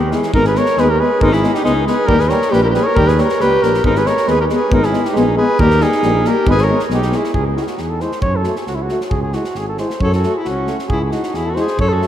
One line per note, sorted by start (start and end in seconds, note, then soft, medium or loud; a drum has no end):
0.00 0.14 D#2 medium
0.00 0.12 D#3 medium
0.00 0.17 G4 medium
0.11 0.32 E3 medium
0.11 0.21 G#3 medium
0.11 0.22 B3 medium
0.11 snare soft
0.15 0.34 G#4 medium
0.23 snare soft
0.33 0.58 G#1 loud
0.33 0.43 G#3 medium
0.33 0.43 B3 medium
0.33 0.44 D#4 medium
0.33 0.45 A#4 loud
0.33 kick medium
0.44 0.57 G#4 medium
0.44 0.59 B4 loud
0.44 snare soft
0.55 0.65 G#3 medium
0.55 0.65 B3 medium
0.55 0.80 A#4 medium
0.55 0.81 C#5 loud
0.55 snare soft
0.66 snare soft
0.77 1.01 D#2 medium
0.77 0.87 G#3 medium
0.77 0.87 B3 medium
0.77 0.90 G#4 medium
0.77 0.92 B4 loud
0.77 snare soft
0.88 1.02 G4 medium
0.88 1.01 A#4 loud
0.99 1.09 G#3 medium
0.99 1.09 B3 medium
0.99 1.24 G#4 medium
0.99 1.23 B4 loud
1.20 1.45 G#1 loud
1.20 1.29 G#3 medium
1.20 1.30 B3 medium
1.20 1.34 D#4 loud
1.20 1.35 A#4 loud
1.20 kick medium
1.33 1.56 E4 medium
1.33 1.56 G#4 medium
1.33 snare soft
1.42 1.51 G#3 medium
1.42 1.52 B3 medium
1.42 snare soft
1.54 1.63 D#4 medium
1.54 1.65 G4 medium
1.54 snare soft
1.63 1.89 C#2 medium
1.63 1.73 G#3 medium
1.63 1.72 B3 medium
1.63 1.85 D#4 medium
1.63 1.86 G#4 loud
1.63 snare soft
1.86 1.95 G#3 medium
1.86 1.96 B3 medium
1.86 2.09 G#4 medium
1.86 2.08 B4 loud
1.86 snare soft
2.06 2.32 D#2 medium
2.06 2.16 G3 medium
2.06 2.18 A#3 medium
2.06 2.20 G4 loud
2.06 2.22 A#4 loud
2.06 kick medium
2.19 2.30 G#4 medium
2.19 2.31 B4 medium
2.19 snare soft
2.28 2.38 G3 medium
2.28 2.39 A#3 medium
2.28 2.52 A#4 loud
2.28 2.55 C#5 loud
2.28 snare soft
2.42 snare soft
2.50 2.77 A#1 medium
2.50 2.60 G3 medium
2.50 2.60 A#3 medium
2.50 2.62 G4 medium
2.50 2.63 B4 loud
2.50 snare soft
2.62 2.71 E4 medium
2.62 2.66 G4 medium
2.62 2.66 A#4 medium
2.67 2.75 G4 medium
2.67 2.72 A#4 medium
2.72 2.82 G3 medium
2.72 2.84 A#3 medium
2.72 2.88 G#4 medium
2.72 2.85 B4 loud
2.72 snare soft
2.83 2.99 A#4 medium
2.83 2.96 C#5 loud
2.94 3.21 D#2 loud
2.94 3.05 G3 medium
2.94 3.03 A#3 medium
2.94 3.10 G4 loud
2.94 3.09 A#4 loud
2.94 kick medium
3.07 3.22 G#4 medium
3.07 3.19 B4 loud
3.07 snare soft
3.18 3.26 G3 medium
3.18 3.27 A#3 medium
3.18 3.42 A#4 medium
3.18 3.42 C#5 medium
3.18 snare soft
3.29 snare soft
3.40 3.60 C#2 medium
3.40 3.49 G3 medium
3.40 3.49 A#3 medium
3.40 3.62 G4 loud
3.40 3.64 B4 loud
3.40 snare soft
3.62 3.81 A#1 medium
3.62 3.71 G3 medium
3.62 3.72 A#3 medium
3.62 3.84 G4 medium
3.62 3.84 A#4 medium
3.62 snare soft
3.74 snare soft
3.83 4.08 G#1 medium
3.83 3.93 G#3 medium
3.83 3.92 B3 medium
3.83 3.98 D#4 medium
3.83 3.99 A#4 loud
3.83 kick medium
3.95 4.09 G#4 medium
3.95 4.08 B4 loud
3.95 snare soft
4.04 4.13 G#3 medium
4.04 4.14 B3 medium
4.04 4.33 A#4 medium
4.04 4.30 C#5 medium
4.04 snare soft
4.17 snare soft
4.26 4.52 D#2 medium
4.26 4.36 G#3 medium
4.26 4.35 B3 medium
4.26 4.39 B4 loud
4.26 snare soft
4.31 4.40 G#4 medium
4.40 4.45 G4 medium
4.40 4.45 A#4 medium
4.49 4.58 G#3 medium
4.49 4.59 B3 medium
4.49 4.75 G#4 medium
4.49 4.75 B4 medium
4.49 snare soft
4.71 4.95 G#1 medium
4.71 4.79 G#3 medium
4.71 4.80 B3 medium
4.71 4.87 D#4 medium
4.71 4.86 A#4 loud
4.71 kick loud
4.83 5.10 E4 medium
4.83 5.07 G#4 medium
4.83 snare soft
4.92 5.01 G#3 medium
4.92 5.03 B3 medium
4.92 snare soft
5.05 5.17 D#4 medium
5.05 5.19 G4 medium
5.05 snare soft
5.12 5.40 A#1 medium
5.12 5.22 G#3 medium
5.12 snare soft
5.17 5.25 B3 medium
5.17 5.36 D#4 medium
5.17 5.38 G#4 medium
5.36 5.45 G#3 medium
5.36 5.47 B3 medium
5.36 5.62 G#4 medium
5.36 5.61 B4 loud
5.59 5.83 D#2 loud
5.59 5.68 G3 medium
5.59 5.68 A#3 medium
5.59 5.83 G4 loud
5.59 5.84 A#4 loud
5.59 kick loud
5.70 snare soft
5.80 5.89 G3 medium
5.80 5.91 A#3 medium
5.80 6.30 D#4 medium
5.80 6.28 G#4 loud
5.80 snare soft
5.92 snare soft
6.02 6.27 A#1 medium
6.02 6.12 G3 medium
6.02 6.12 A#3 medium
6.02 snare soft
6.25 6.35 G3 medium
6.25 6.34 A#3 medium
6.25 6.49 G4 medium
6.25 6.48 A#4 medium
6.25 snare soft
6.46 6.71 G#1 loud
6.46 6.56 G#3 medium
6.46 6.55 B3 medium
6.46 6.63 B4 loud
6.46 kick loud
6.51 6.65 G#4 loud
6.58 6.82 C#5 medium
6.58 snare soft
6.64 6.83 A#4 medium
6.68 6.78 G#3 medium
6.68 6.77 B3 medium
6.79 snare soft
6.89 7.14 B1 medium
6.89 7.00 G#3 medium
6.89 6.98 B3 medium
6.89 7.18 D#4 medium
6.89 snare soft
6.94 7.18 G4 medium
7.02 snare soft
7.10 7.22 G#3 medium
7.10 7.19 B3 medium
7.10 snare soft
7.16 7.37 E4 medium
7.16 7.34 G#4 medium
7.24 snare soft
7.34 7.59 C#2 medium
7.34 7.45 G#4 loud
7.34 kick medium
7.47 7.57 G#4 medium
7.55 7.65 G#3 soft
7.55 7.65 E4 soft
7.55 7.64 F#4 medium
7.55 snare soft
7.62 7.68 G#4 medium
7.67 7.81 F#4 medium
7.67 snare soft
7.78 8.03 E2 medium
7.78 7.91 G#4 medium
7.78 snare soft
7.89 8.03 A4 medium
8.00 8.10 G#3 medium
8.00 8.10 E4 medium
8.00 8.21 C5 medium
8.00 snare soft
8.12 snare soft
8.22 8.47 F#2 medium
8.22 8.38 C#5 loud
8.22 kick medium
8.36 8.59 A4 medium
8.43 8.55 A3 medium
8.43 8.53 F#4 medium
8.43 snare soft
8.56 8.67 G#4 medium
8.56 snare soft
8.67 8.92 C#2 medium
8.67 8.77 F#4 medium
8.67 snare soft
8.75 8.84 E4 medium
8.82 9.02 F#4 medium
8.89 8.99 A3 medium
8.89 8.99 F#4 medium
8.89 snare soft
9.01 snare soft
9.10 9.36 C#2 medium
9.10 9.22 G#4 medium
9.10 kick medium
9.22 9.36 G#4 medium
9.33 9.44 G#3 medium
9.33 9.42 E4 soft
9.33 9.59 F#4 medium
9.33 snare soft
9.44 snare soft
9.55 9.80 G#1 medium
9.55 9.68 G#4 medium
9.55 snare soft
9.68 9.78 A4 medium
9.78 9.87 G#3 medium
9.78 9.88 E4 medium
9.78 10.03 C5 medium
9.78 snare soft
9.90 snare soft
10.00 10.25 F#2 loud
10.00 10.14 A4 medium
10.00 10.13 C#5 loud
10.00 kick medium
10.12 10.39 F#4 medium
10.12 10.36 A4 medium
10.12 snare soft
10.23 10.33 A3 medium
10.23 10.32 F#4 medium
10.23 snare soft
10.34 10.47 E4 medium
10.34 10.44 G#4 medium
10.44 10.70 C#2 medium
10.44 10.77 F#4 medium
10.44 snare soft
10.49 10.79 C#4 medium
10.67 10.76 A3 medium
10.67 10.78 F#4 soft
10.67 snare soft
10.79 snare soft
10.88 11.14 C#2 medium
10.88 11.02 E4 medium
10.88 11.00 G#4 medium
10.88 kick medium
11.01 11.16 E4 soft
11.01 11.13 G#4 medium
11.11 11.20 G#3 soft
11.11 11.38 D#4 medium
11.11 11.22 E4 soft
11.11 11.36 F#4 medium
11.11 snare soft
11.23 snare soft
11.34 11.59 E2 medium
11.34 11.51 E4 medium
11.34 11.47 G#4 medium
11.34 snare soft
11.46 11.56 A4 medium
11.50 11.62 F#4 medium
11.55 11.66 G#3 medium
11.55 11.65 E4 medium
11.55 11.78 C5 medium
11.55 snare soft
11.60 11.80 G#4 medium
11.67 snare soft
11.78 12.03 F#2 loud
11.78 11.94 A4 medium
11.78 11.90 C#5 loud
11.78 kick medium
11.89 12.07 A4 medium
11.93 12.07 F#4 medium
12.00 12.07 A3 medium
12.00 12.07 F#4 medium
12.00 snare soft